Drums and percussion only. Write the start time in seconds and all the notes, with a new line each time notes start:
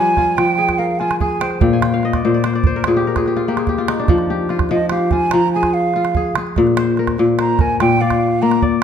0.17 calabash thump, calabash click
0.38 calabash click
0.69 calabash thump, calabash click
1.00 calabash click
1.11 calabash click
1.20 calabash thump
1.41 calabash click
1.51 calabash click
1.61 calabash thump
1.82 calabash click
1.92 calabash click
2.03 calabash click
2.13 calabash thump, calabash click
2.44 calabash click
2.54 calabash click
2.64 calabash thump, calabash click
2.84 calabash click
3.16 calabash thump, calabash click
3.26 calabash click
3.37 calabash click
3.57 calabash click
3.67 calabash thump, calabash click
3.78 calabash click
3.88 calabash click
3.98 calabash click
4.08 calabash thump, calabash click
4.18 calabash click
4.49 calabash click
4.59 calabash thump, calabash click
4.69 calabash click
4.89 calabash click
5.11 calabash thump, calabash click
5.31 calabash click
5.63 calabash thump, calabash click
5.94 calabash click
6.05 calabash click
6.15 calabash thump
6.36 calabash click
6.47 calabash click
6.56 calabash thump, calabash click
6.67 calabash click
6.77 calabash click
6.97 calabash click
7.07 calabash thump, calabash click
7.18 calabash click
7.39 calabash click
7.59 calabash thump, calabash click
7.80 calabash click
8.10 calabash thump, calabash click
8.42 calabash click
8.51 calabash click
8.62 calabash thump